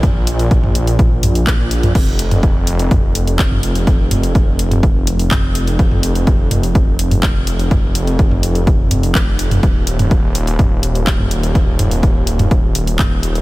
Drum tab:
CC |----------------|x---------------|----------------|----------------|
HH |x-xxx-xxx-xxx-xx|x-xxx-xxx-xxx-xx|x-xxx-xxx-xxx-xx|x-xxx-xxx-xxx-xx|
CP |------------x---|------------x---|------------x---|------------x---|
T2 |o----o----o----o|---o----o----o--|--o----o----o---|-o----o----o----|
BD |o---o---o---o---|o---o---o---o---|o---o---o---o---|o---o---o---o---|

CC |----------------|----------------|----------------|
HH |x-xxx-xxx-xxx-xx|x-xxx-xxx-xxx-xx|x-xxx-xxx-xxx-xx|
CP |------------x---|------------x---|------------x---|
T2 |o----o----o----o|---o----o----o--|--o----o----o---|
BD |o---o---o---o---|o---o---o---o---|o---o---o---o---|